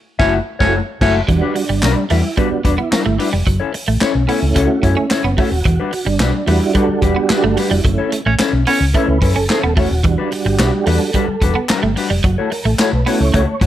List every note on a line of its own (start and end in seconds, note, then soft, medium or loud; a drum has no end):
0.19 0.38 F#1 loud
0.19 0.39 A3 loud
0.19 0.33 C#4 medium
0.19 0.38 E4 loud
0.19 0.38 F#4 loud
0.19 0.38 E5 loud
0.19 kick loud
0.19 snare loud
0.59 0.79 F#1 medium
0.59 0.79 A3 loud
0.59 0.79 A3 medium
0.59 0.74 C#4 loud
0.59 0.79 E4 loud
0.59 0.79 E4 medium
0.59 0.78 F#4 loud
0.59 0.79 F#4 loud
0.59 0.78 C#5 medium
0.59 kick loud
0.59 snare loud
1.01 1.20 F#1 loud
1.01 1.19 A3 medium
1.01 1.20 A3 loud
1.01 1.15 C#4 loud
1.01 1.20 E4 loud
1.01 1.20 E4 medium
1.01 1.20 F#4 loud
1.01 1.20 F#4 medium
1.01 1.20 E5 loud
1.01 kick loud
1.01 snare loud
1.01 crash medium
1.28 1.39 E1 loud
1.28 1.40 E3 medium
1.28 1.64 G3 medium
1.28 2.06 D4 loud
1.28 1.65 F#4 medium
1.28 muted clean electric guitar stroke soft
1.28 kick loud
1.28 closed hi-hat medium
1.41 1.54 G3 medium
1.41 1.55 D4 medium
1.41 1.55 F#4 medium
1.41 1.55 B4 medium
1.55 muted clean electric guitar stroke soft
1.55 open hi-hat medium
1.69 1.80 G1 medium
1.69 1.81 G3 medium
1.69 muted clean electric guitar stroke soft
1.83 1.93 B1 medium
1.83 2.03 G3 medium
1.83 1.96 D4 medium
1.83 1.96 F#4 medium
1.83 1.95 B4 medium
1.83 snare loud
1.83 clap loud
1.83 closed hi-hat loud
1.97 muted clean electric guitar stroke soft
2.10 2.21 E2 medium
2.10 2.26 G3 medium
2.10 2.22 A3 medium
2.10 2.24 D4 medium
2.10 2.36 E4 loud
2.10 2.23 F#4 medium
2.10 2.23 B4 medium
2.10 open hi-hat medium
2.24 muted clean electric guitar stroke soft
2.37 2.58 G3 medium
2.37 2.62 G3 medium
2.37 2.49 G3 medium
2.37 2.66 B3 loud
2.37 2.51 D4 medium
2.37 2.62 D4 soft
2.37 2.62 F#4 medium
2.37 2.50 F#4 medium
2.37 2.50 B4 medium
2.37 kick medium
2.37 closed hi-hat medium
2.51 muted clean electric guitar stroke soft
2.51 muted fingered electric bass stroke soft
2.64 2.75 E1 medium
2.64 2.80 G3 medium
2.64 2.77 D4 medium
2.64 2.79 D4 medium
2.64 2.77 F#4 medium
2.64 2.76 B4 medium
2.64 muted clean electric guitar stroke soft
2.64 kick medium
2.64 closed hi-hat medium
2.77 2.90 B3 medium
2.77 3.30 E4 loud
2.77 muted clean electric guitar stroke soft
2.91 3.12 G3 medium
2.91 3.05 D4 medium
2.91 3.04 F#4 medium
2.91 3.04 B4 medium
2.91 muted fingered electric bass stroke soft
2.91 snare loud
2.91 clap medium
2.91 closed hi-hat medium
3.05 3.16 G1 medium
3.05 3.17 A3 medium
3.05 muted clean electric guitar stroke soft
3.18 3.35 G3 medium
3.18 3.32 D4 medium
3.18 3.32 F#4 medium
3.18 3.31 B4 medium
3.18 muted clean electric guitar stroke soft
3.18 open hi-hat medium
3.32 3.43 F1 medium
3.32 3.44 G3 medium
3.32 muted clean electric guitar stroke soft
3.46 3.57 F#1 loud
3.46 3.58 F#3 medium
3.46 muted clean electric guitar stroke soft
3.46 kick loud
3.46 closed hi-hat medium
3.60 3.72 C#4 medium
3.60 3.73 E4 medium
3.60 3.73 A4 medium
3.60 3.74 C#5 medium
3.73 muted clean electric guitar stroke soft
3.73 open hi-hat medium
3.87 3.98 A1 medium
3.87 3.99 A3 medium
3.87 muted clean electric guitar stroke soft
4.01 4.22 C#4 medium
4.01 4.14 E4 medium
4.01 4.14 A4 medium
4.01 4.13 C#5 loud
4.01 snare loud
4.01 clap medium
4.01 closed hi-hat loud
4.15 4.25 B1 medium
4.15 muted clean electric guitar stroke medium
4.27 5.06 A3 medium
4.27 4.40 B3 medium
4.27 4.44 C#4 medium
4.27 4.95 C#4 medium
4.27 4.42 E4 medium
4.27 5.07 E4 medium
4.27 4.41 A4 medium
4.27 4.41 C#5 medium
4.27 open hi-hat medium
4.42 4.53 C#2 medium
4.42 muted clean electric guitar stroke soft
4.55 4.66 C#2 loud
4.55 4.67 A3 medium
4.55 4.76 C#4 medium
4.55 4.69 E4 medium
4.55 4.98 F#4 loud
4.55 4.69 A4 medium
4.55 4.68 C#5 medium
4.55 kick medium
4.55 closed hi-hat loud
4.70 muted clean electric guitar stroke soft
4.83 4.94 F#2 loud
4.83 4.99 C#4 medium
4.83 4.96 E4 medium
4.83 4.96 A4 medium
4.83 4.96 C#5 medium
4.83 muted clean electric guitar stroke soft
4.83 kick medium
4.83 closed hi-hat medium
4.96 5.35 C#4 loud
4.96 5.08 C#4 medium
4.96 muted clean electric guitar stroke soft
5.10 5.31 C#4 medium
5.10 5.24 E4 medium
5.10 5.24 A4 medium
5.10 5.23 C#5 medium
5.10 muted fingered electric bass stroke soft
5.10 muted clean electric guitar stroke soft
5.10 snare loud
5.10 clap medium
5.10 closed hi-hat medium
5.24 5.34 F#1 loud
5.24 5.36 B3 medium
5.24 muted clean electric guitar stroke soft
5.37 5.49 A3 medium
5.37 5.54 C#4 medium
5.37 5.52 E4 medium
5.37 6.08 F#4 medium
5.37 5.51 A4 medium
5.37 5.51 C#5 medium
5.37 kick loud
5.37 open hi-hat medium
5.51 5.62 D#1 medium
5.51 muted clean electric guitar stroke soft
5.65 5.76 E1 loud
5.65 5.77 E3 loud
5.65 muted clean electric guitar stroke soft
5.65 kick loud
5.65 closed hi-hat medium
5.80 5.92 G3 medium
5.80 5.93 D4 medium
5.80 5.93 F#4 medium
5.80 5.93 B4 medium
5.92 muted clean electric guitar stroke soft
5.92 open hi-hat medium
6.05 6.17 G1 medium
6.05 6.18 G3 medium
6.05 6.46 D4 loud
6.05 muted clean electric guitar stroke soft
6.20 6.30 B1 medium
6.20 6.41 G3 medium
6.20 6.34 D4 medium
6.20 6.34 F#4 medium
6.20 6.33 B4 medium
6.20 snare loud
6.20 clap medium
6.20 closed hi-hat loud
6.34 muted clean electric guitar stroke soft
6.46 6.58 E2 medium
6.46 6.63 G3 medium
6.46 7.80 G3 medium
6.46 6.59 A3 medium
6.46 6.61 D4 medium
6.46 7.81 D4 medium
6.46 6.72 E4 loud
6.46 6.61 F#4 medium
6.46 7.81 F#4 medium
6.46 6.60 B4 medium
6.46 open hi-hat medium
6.61 muted clean electric guitar stroke soft
6.73 6.86 G3 medium
6.73 6.96 G3 medium
6.73 6.88 D4 medium
6.73 6.88 F#4 medium
6.73 7.03 A4 loud
6.73 6.87 B4 medium
6.73 kick medium
6.73 closed hi-hat loud
6.88 muted clean electric guitar stroke soft
6.88 muted fingered electric bass stroke medium
7.01 7.13 E1 medium
7.01 7.19 G3 medium
7.01 7.16 D4 medium
7.01 7.16 F#4 medium
7.01 7.44 G4 loud
7.01 7.15 B4 medium
7.01 muted clean electric guitar stroke soft
7.01 kick medium
7.01 closed hi-hat medium
7.16 7.28 B3 medium
7.16 muted clean electric guitar stroke medium
7.30 7.50 G3 medium
7.30 7.44 D4 medium
7.30 7.43 F#4 medium
7.30 7.43 B4 medium
7.30 muted fingered electric bass stroke soft
7.30 snare loud
7.30 clap medium
7.30 closed hi-hat medium
7.42 7.54 G1 loud
7.42 7.55 A3 medium
7.42 7.57 A4 loud
7.42 muted clean electric guitar stroke soft
7.56 7.74 G3 medium
7.56 7.72 D4 medium
7.56 7.71 F#4 medium
7.56 7.71 G4 medium
7.56 7.71 B4 medium
7.56 muted clean electric guitar stroke soft
7.56 open hi-hat medium
7.70 7.81 F1 medium
7.70 7.82 G3 medium
7.70 7.84 E4 medium
7.70 muted clean electric guitar stroke soft
7.84 7.95 F#1 loud
7.84 7.96 F#3 medium
7.84 8.21 A3 medium
7.84 8.21 C#4 medium
7.84 8.22 E4 medium
7.84 muted clean electric guitar stroke soft
7.84 kick loud
7.84 closed hi-hat medium
7.98 8.11 C#4 medium
7.98 8.12 E4 medium
7.98 8.12 A4 medium
7.98 8.12 C#5 medium
8.12 muted clean electric guitar stroke soft
8.12 closed hi-hat medium
8.26 8.36 A1 medium
8.26 8.38 A3 medium
8.26 8.35 C#4 medium
8.26 muted clean electric guitar stroke medium
8.39 8.60 C#4 medium
8.39 8.54 E4 medium
8.39 8.53 A4 medium
8.39 8.53 C#5 medium
8.39 snare loud
8.39 clap loud
8.39 closed hi-hat loud
8.53 8.64 B1 medium
8.53 muted clean electric guitar stroke soft
8.66 8.79 B3 medium
8.66 8.85 C#4 loud
8.66 8.84 C#4 medium
8.66 8.81 E4 medium
8.66 8.81 A4 medium
8.66 8.81 C#5 medium
8.66 open hi-hat medium
8.80 8.91 C#2 medium
8.80 muted clean electric guitar stroke soft
8.93 9.19 A3 medium
8.93 9.06 A3 medium
8.93 9.19 C#4 soft
8.93 9.16 C#4 medium
8.93 9.19 E4 medium
8.93 9.09 E4 medium
8.93 9.08 A4 loud
8.93 9.33 B4 loud
8.93 9.08 C#5 loud
8.93 kick loud
8.93 closed hi-hat medium
9.08 9.19 C#2 medium
9.08 muted clean electric guitar stroke soft
9.22 9.32 F#2 medium
9.22 9.38 C#4 medium
9.22 9.36 E4 medium
9.22 9.35 A4 medium
9.22 9.35 C#5 medium
9.22 muted clean electric guitar stroke medium
9.22 kick loud
9.22 open hi-hat medium
9.35 9.46 F#1 medium
9.35 9.47 C#4 medium
9.35 9.74 A4 loud
9.35 muted clean electric guitar stroke soft
9.49 9.70 C#4 medium
9.49 9.64 E4 medium
9.49 9.64 A4 medium
9.49 9.63 C#5 medium
9.49 muted clean electric guitar stroke soft
9.49 snare loud
9.49 clap medium
9.49 closed hi-hat medium
9.63 9.77 D#1 medium
9.63 9.75 B3 medium
9.63 muted clean electric guitar stroke soft
9.76 9.87 E1 medium
9.76 9.88 A3 medium
9.76 9.93 C#4 medium
9.76 9.91 E4 medium
9.76 10.03 F#4 loud
9.76 9.91 A4 medium
9.76 9.90 C#5 medium
9.76 kick loud
9.76 open hi-hat medium
9.91 10.04 D#1 medium
9.91 muted clean electric guitar stroke soft
10.03 10.15 E1 loud
10.03 10.16 E3 loud
10.03 10.85 G3 medium
10.03 10.85 D4 medium
10.03 10.85 F#4 medium
10.03 muted clean electric guitar stroke soft
10.03 kick loud
10.03 closed hi-hat medium
10.18 10.30 G3 medium
10.18 10.30 D4 medium
10.18 10.31 F#4 medium
10.18 10.31 B4 medium
10.31 muted clean electric guitar stroke soft
10.31 open hi-hat medium
10.45 10.56 G1 medium
10.45 10.57 G3 medium
10.45 10.88 G4 medium
10.45 muted clean electric guitar stroke soft
10.58 10.70 B1 medium
10.58 10.80 G3 medium
10.58 10.73 D4 medium
10.58 10.72 F#4 medium
10.58 10.72 B4 medium
10.58 snare loud
10.58 clap medium
10.58 closed hi-hat loud
10.73 muted clean electric guitar stroke soft
10.86 10.97 E2 medium
10.86 11.11 G3 medium
10.86 11.03 G3 medium
10.86 10.98 A3 medium
10.86 11.11 D4 soft
10.86 11.01 D4 medium
10.86 11.11 F#4 medium
10.86 11.01 F#4 medium
10.86 11.65 A4 medium
10.86 11.00 B4 medium
10.86 open hi-hat medium
11.01 muted clean electric guitar stroke medium
11.14 11.35 G3 medium
11.14 11.26 G3 medium
11.14 11.28 D4 medium
11.14 11.28 F#4 medium
11.14 11.27 B4 medium
11.14 kick medium
11.14 closed hi-hat medium
11.28 muted clean electric guitar stroke medium
11.28 muted fingered electric bass stroke medium
11.42 11.52 E1 loud
11.42 11.58 G3 medium
11.42 11.56 D4 medium
11.42 11.55 F#4 medium
11.42 11.55 B4 medium
11.42 muted clean electric guitar stroke soft
11.42 kick medium
11.42 closed hi-hat medium
11.55 11.67 B3 medium
11.55 muted clean electric guitar stroke soft
11.69 11.90 G3 medium
11.69 11.83 D4 medium
11.69 11.83 F#4 medium
11.69 11.82 B4 medium
11.69 muted fingered electric bass stroke soft
11.69 snare loud
11.69 clap loud
11.69 clap medium
11.69 closed hi-hat medium
11.83 11.93 G1 medium
11.83 11.94 A3 medium
11.83 muted clean electric guitar stroke soft
11.96 12.13 G3 medium
11.96 12.11 D4 medium
11.96 12.10 F#4 medium
11.96 12.10 B4 medium
11.96 muted clean electric guitar stroke soft
11.96 open hi-hat medium
12.10 12.21 F1 medium
12.10 12.22 G3 medium
12.10 muted clean electric guitar stroke medium
12.24 12.35 F#1 loud
12.24 12.35 F#3 medium
12.24 12.37 F#4 medium
12.24 muted clean electric guitar stroke soft
12.24 kick loud
12.24 closed hi-hat medium
12.38 12.51 A3 medium
12.38 12.51 E4 medium
12.38 12.52 F#4 medium
12.38 12.51 A4 medium
12.38 12.52 C#5 medium
12.52 12.66 A#4 medium
12.52 muted clean electric guitar stroke soft
12.52 open hi-hat medium
12.65 12.76 A1 loud
12.65 12.77 A3 medium
12.65 12.91 A4 medium
12.65 muted clean electric guitar stroke soft
12.79 13.00 A3 medium
12.79 12.93 E4 medium
12.79 12.93 F#4 medium
12.79 12.92 C#5 medium
12.79 snare loud
12.79 clap loud
12.79 clap medium
12.79 closed hi-hat loud
12.93 13.03 B1 medium
12.93 13.18 B4 medium
12.93 muted clean electric guitar stroke soft
13.06 13.43 A3 medium
13.06 13.23 A3 medium
13.06 13.18 B3 medium
13.06 13.43 C#4 medium
13.06 13.43 E4 medium
13.06 13.20 E4 medium
13.06 13.20 F#4 medium
13.06 13.19 C#5 medium
13.06 open hi-hat medium
13.20 13.31 C#2 medium
13.20 13.66 C#5 loud
13.20 muted clean electric guitar stroke soft
13.33 13.44 C#2 medium
13.33 13.54 A3 medium
13.33 13.45 A3 medium
13.33 13.47 E4 medium
13.33 13.47 F#4 medium
13.33 13.46 C#5 medium
13.33 kick medium
13.33 closed hi-hat loud
13.48 muted clean electric guitar stroke soft
13.61 13.66 F#2 loud
13.61 13.66 A3 medium
13.61 13.66 E4 medium
13.61 13.66 F#4 medium
13.61 13.66 C#5 medium
13.61 muted clean electric guitar stroke medium
13.61 kick loud
13.61 closed hi-hat medium